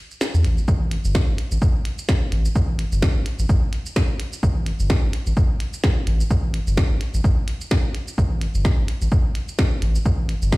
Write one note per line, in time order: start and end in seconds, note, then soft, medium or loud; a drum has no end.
0.11 shaker soft
0.21 snare loud
0.21 shaker medium
0.34 0.46 E2 medium
0.34 shaker soft
0.44 0.60 A1 medium
0.44 closed hi-hat medium
0.58 shaker soft
0.68 0.97 A1 loud
0.68 kick loud
0.68 shaker soft
0.91 closed hi-hat medium
1.05 1.18 G1 medium
1.05 shaker medium
1.15 kick loud
1.15 snare loud
1.15 shaker soft
1.28 1.35 A1 medium
1.38 closed hi-hat medium
1.52 1.58 A1 loud
1.52 shaker medium
1.62 kick loud
1.62 shaker soft
1.85 closed hi-hat medium
1.98 shaker medium
2.09 kick loud
2.09 snare loud
2.09 shaker soft
2.32 2.48 A1 medium
2.32 closed hi-hat medium
2.45 shaker medium
2.55 2.84 A1 loud
2.55 kick loud
2.55 shaker soft
2.79 closed hi-hat loud
2.92 3.06 G1 medium
2.92 shaker medium
3.02 kick loud
3.02 snare medium
3.02 shaker soft
3.16 3.22 A1 medium
3.26 closed hi-hat loud
3.39 3.45 A1 loud
3.39 shaker medium
3.49 kick loud
3.49 shaker soft
3.73 closed hi-hat loud
3.86 shaker medium
3.96 kick loud
3.96 snare loud
3.96 shaker soft
4.20 closed hi-hat loud
4.33 shaker medium
4.43 4.72 A1 loud
4.43 kick loud
4.43 shaker soft
4.66 closed hi-hat loud
4.80 4.93 G1 medium
4.80 shaker soft
4.90 kick loud
4.90 snare medium
4.90 shaker soft
5.03 5.10 A1 medium
5.13 closed hi-hat loud
5.27 5.33 A1 loud
5.27 shaker soft
5.37 kick loud
5.37 shaker soft
5.60 closed hi-hat loud
5.73 shaker medium
5.84 kick loud
5.84 snare loud
5.84 shaker soft
6.07 6.23 A1 medium
6.07 closed hi-hat loud
6.20 shaker medium
6.31 6.59 A1 loud
6.31 kick loud
6.31 shaker soft
6.54 closed hi-hat medium
6.67 6.81 G1 medium
6.67 shaker soft
6.77 kick loud
6.77 snare medium
6.77 shaker soft
6.91 6.97 A1 medium
7.01 closed hi-hat loud
7.14 7.20 A1 loud
7.14 shaker medium
7.24 kick loud
7.24 shaker soft
7.48 closed hi-hat loud
7.61 shaker medium
7.71 kick loud
7.71 snare medium
7.71 shaker soft
7.95 closed hi-hat medium
8.08 shaker medium
8.18 8.47 A1 loud
8.18 kick loud
8.18 shaker soft
8.41 closed hi-hat medium
8.55 8.68 G1 medium
8.55 shaker soft
8.65 kick loud
8.65 snare medium
8.65 shaker soft
8.78 8.85 A1 medium
8.88 closed hi-hat medium
9.02 9.08 A1 loud
9.02 shaker medium
9.12 kick loud
9.12 shaker soft
9.35 closed hi-hat loud
9.48 shaker soft
9.59 kick loud
9.59 snare medium
9.59 shaker soft
9.82 9.98 A1 medium
9.82 closed hi-hat medium
9.95 shaker medium
10.06 10.34 A1 loud
10.06 kick loud
10.06 shaker soft
10.29 closed hi-hat medium
10.42 10.56 G1 medium
10.42 shaker soft
10.52 kick loud
10.52 snare medium
10.52 shaker soft